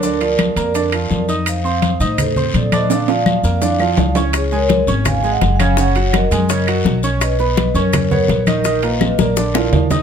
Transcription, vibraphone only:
\new Staff \with { instrumentName = "Vibraphone" } { \time 4/4 \key bes \phrygian \tempo 4 = 167 <bes' d''>8 <bes' d''>2. r8 | <c'' f''>4. <c'' ees''>8 <a' c''>4 <a' d''>8 <c'' ees''>8 | <d'' f''>8 <d'' f''>2. r8 | <aes' des''>8 <bes' des''>4 r8 \tuplet 3/2 { <f'' aes''>4 <ees'' ges''>8~ <ees'' ges''>8 <f'' aes''>4 } |
<des'' ges''>4 <bes' ees''>2~ <bes' ees''>8 r8 | <b' dis''>4. <bes' cis''>4 <bes' cis''>4 <bes' dis''>8~ | <bes' dis''>8 <ces'' ees''>4 <bes' d''>2 r8 | }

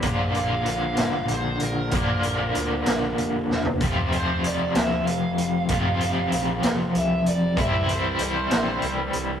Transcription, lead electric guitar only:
\new Staff \with { instrumentName = "Lead electric guitar" } { \time 6/8 \key bes \lydian \tempo 4. = 64 r8 f''8 f''4 c''8 bes'8~ | bes'2~ bes'8 r8 | r8 c''8 d''8 e''8 f''4~ | f''2 e''8 d''8 |
e''8 c''8 c''4. r8 | }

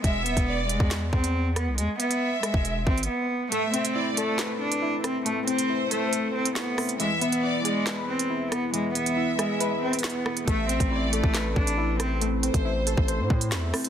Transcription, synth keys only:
\new Staff \with { instrumentName = "Synth keys" } { \time 4/4 \key a \minor \tempo 4 = 138 r1 | r1 | a8 c'8 e'8 a'8 b'4 e'8 c'8 | a8 c'8 e'8 a'4. e'8 c'8 |
e8 b8 e'8 gis'8 b'4 e'8 b8 | e8 b8 e'8 gis'8 b'4 e'8 b8 | a8 c'8 e'8 a'8 b'4 e'8 c'8 | a8 c'8 e'8 a'8 c''4 e'8 c'8 | }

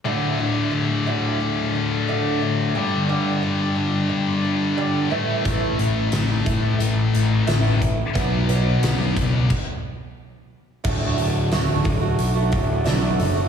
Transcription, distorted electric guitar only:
\new Staff \with { instrumentName = "Distorted electric guitar" } { \clef bass \time 4/4 \key d \major \tempo 4 = 89 <d, a, d>1 | <g, d g>2.~ <g, d g>8 <a, e a>8~ | <a, e a>2.~ <a, e a>8 r8 | <b, fis b>2 r2 |
r1 | }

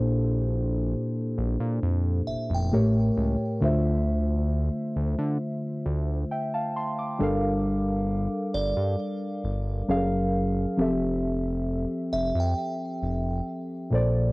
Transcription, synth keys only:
\new Staff \with { instrumentName = "Synth keys" } { \time 4/4 \key f \major \tempo 4 = 67 << { r1 | r2. <e'' g''>16 <f'' a''>16 <a'' c'''>16 d'''16~ | d'''16 r2. r8. | r1 | } \\ { <bes, bes d' a' c''>2. <a, a g' bes' cis''>4 | <d a f' c'' e''>1 | <g d' a' bes' f''>2. <fis cis' gis' a' ais' eis''>4 | <f c' g' a' e''>2.~ <f c' g' a' e''>8 <bes, bes a' c'' d''>8 | } >> }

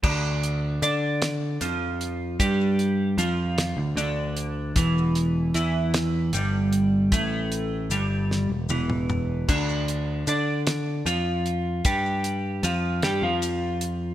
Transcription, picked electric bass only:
\new Staff \with { instrumentName = "Picked electric bass" } { \clef bass \time 6/8 \key d \minor \tempo 4. = 51 d,4 d4 f,4 | g,4 f,8. d,16 d,4 | e,,4 e,4 g,,4 | a,,4 g,,8. e,,16 e,,4 |
d,4 d4 f,4 | g,4 f,8 g,16 f,4~ f,16 | }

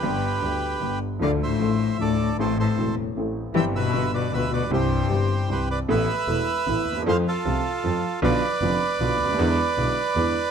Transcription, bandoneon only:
\new Staff \with { instrumentName = "Bandoneon" } { \time 3/4 \key c \major \tempo 4 = 154 <g' b'>2~ <g' b'>8 r8 | <d'' f''>8 <c'' e''>4. <a' d''>4 | <a' c''>8 <a' c''>4 r4. | <e'' g''>8 <b' e''>4 <b' d''>8 <b' e''>8 <b' d''>8 |
<g' c''>2 <g' b'>8 <b' d''>8 | \key a \minor <b' e''>2. | <c'' f''>8 <f' a'>2~ <f' a'>8 | <b' d''>2.~ |
<b' d''>2. | }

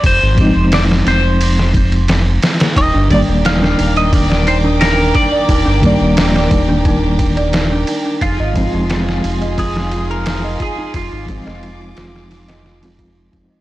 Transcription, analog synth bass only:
\new Staff \with { instrumentName = "Analog synth bass" } { \clef bass \time 4/4 \key f \dorian \tempo 4 = 88 f,,16 aes,,8 f,,8. f,,2 r8 | ees,,16 g,,8 ees,,8. ees,,2 r8 | ees,,16 g,,8 ees,,8. ees,,2 r8 | f,,16 aes,,8 f,,8. f,,2 r8 |
f,,16 aes,,8 f,,8. f,,2 f,,16 r16 | }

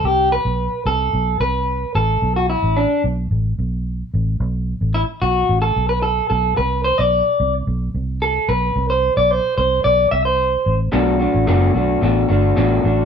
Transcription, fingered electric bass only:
\new Staff \with { instrumentName = "Fingered electric bass" } { \clef bass \time 4/4 \key c \lydian \tempo 4 = 110 c,8. b,,8 r16 c,8 b,,8 c,4 a,,8 | b,,8. a,,8 r16 b,,8 a,,8 b,,4 a,,8 | b,,8. a,,8 r16 b,,8 a,,8 b,,4 b,,8 | c,8. b,,8 r16 c,8 b,,8 c,4 b,,8 |
c,8. b,,8 r16 c,8 b,,8 c,4 a,,8 | b,,8. a,,16 fis,,8 b,,8 a,,8 g,,8 a,,8 a,,8 | }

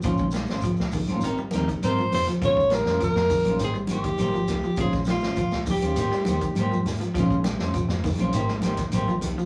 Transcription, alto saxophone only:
\new Staff \with { instrumentName = "Alto saxophone" } { \time 4/4 \key bes \dorian \tempo 4 = 101 r2. c''8 c''8 | des''8 bes'8 bes'4 aes'8 g'4. | aes'8 f'4 g'2 r8 | r1 | }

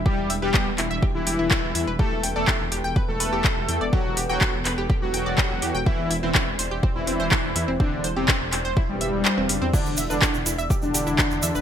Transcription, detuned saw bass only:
\new Staff \with { instrumentName = "Detuned saw bass" } { \clef bass \time 4/4 \key e \minor \tempo 4 = 124 r16 e,,16 e,,16 e,,16 r16 e,,16 e,,16 e,,16 r16 e,,16 e,,16 e,,16 r16 e,,16 e,16 e,,16 | r16 e,,16 e,,16 e,,16 r16 e,,16 e,,16 e,,16 r16 e,,16 e,,16 e,,16 r16 e,,16 e,16 e,,16 | r16 e,,16 e,,16 e,,16 r16 e,,16 e,,16 e,,16 r16 e,,16 e,,16 e,,16 r16 e,,16 e,16 e,,16 | r16 e,,16 e,,16 e,,16 r16 e,,16 e,,16 e,,16 r16 e,,16 e,,16 e,,16 r16 e,,16 e,16 e,,16 |
r16 e,,16 e,,16 e,,16 r16 e,,16 e,,16 e,,16 r16 e,,16 e,,16 e,,16 r16 e,,16 fis,,16 e,16 | r16 e,,16 e,,16 e,,16 r16 e,,16 e,,16 e,,16 r16 e,,16 e,,16 e,,16 r16 e,,16 e,16 e,,16 | }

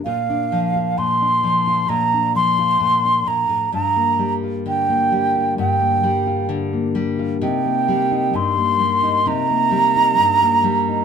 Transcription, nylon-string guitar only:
\new Staff \with { instrumentName = "Nylon-string guitar" } { \time 4/4 \key bes \major \tempo 4 = 65 << { <bes f'>16 d'8 f'8 d'8 f'16 f'16 d'8 f'8 d'8. | f'16 bes8 f'8 bes8 f'16 f'16 bes8 f'8 bes8 f'16 | ees'16 bes8 ees'8 bes8 ees'16 ees'16 bes8 ees'8 bes8 ees'16 | } \\ { bes,8 f8 bes,8 f8 bes,8 f8 bes,8 bes,16 a,16 | g,8 g8 d8 g8 g,8 g8 d8 g8 | c8 g8 g,8 g8 c8 g8 g,8 g8 | } >> }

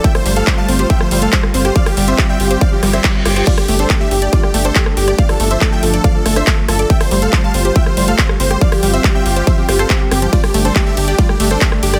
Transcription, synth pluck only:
\new Staff \with { instrumentName = "Synth pluck" } { \time 4/4 \key f \major \tempo 4 = 140 f16 f16 g16 a16 g16 g16 c'16 g'16 f16 f16 g16 a16 g16 g16 c'16 g'16 | f16 f16 g16 c'16 g16 g16 f'16 c''16 f16 f16 g16 c'16 g16 g16 f'16 c''16 | g16 g16 a16 d'16 a16 a16 g'16 d''16 g16 g16 a16 d'16 a16 a16 g'16 d''16 | f16 f16 a16 d'16 a16 a16 f'16 d''16 f16 f16 a16 d'16 a16 a16 f'16 d''16 |
f16 f16 g16 a16 g16 g16 c'16 g'16 f16 f16 g16 a16 g16 g16 c'16 g'16 | f16 f16 g16 c'16 g16 g16 f'16 c''16 f16 f16 c''16 c''16 c'16 g'16 c'16 f16 | g16 g16 a16 d'16 a16 a16 g'16 d''16 g16 g16 a16 d'16 a16 a16 g'16 d''16 | }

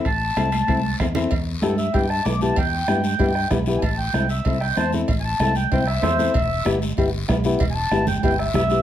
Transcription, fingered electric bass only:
\new Staff \with { instrumentName = "Fingered electric bass" } { \clef bass \time 4/4 \key e \phrygian \tempo 4 = 191 a,,4 c,4 c,4 e,4 | e,4 g,4 g,4 b,,4 | e,4 g,4 g,4 b,,4 | a,,4 c,4 c,4 e,4 |
a,,4 c,4 c,4 e,4 | e,,4 g,,4 g,,4 b,,4 | e,,4 g,,4 g,,4 b,,4 | }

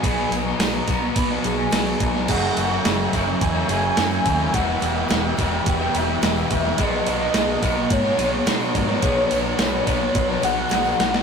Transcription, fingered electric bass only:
\new Staff \with { instrumentName = "Fingered electric bass" } { \clef bass \time 4/4 \key b \major \tempo 4 = 107 b,,8 b,,8 b,,8 b,,8 b,,8 b,,8 b,,8 b,,8 | fis,,8 fis,,8 fis,,8 fis,,8 e,8 fis,,8 fis,8 dis,8 | e,,8 e,,8 e,,8 e,,8 e,,8 e,,8 e,,8 e,,8 | b,,8 b,,8 b,,8 b,,8 gis,8 b,,8 b,8 gis,8 |
b,,8 b,,8 b,,8 b,,8 b,,8 b,,8 b,,8 b,,8 | }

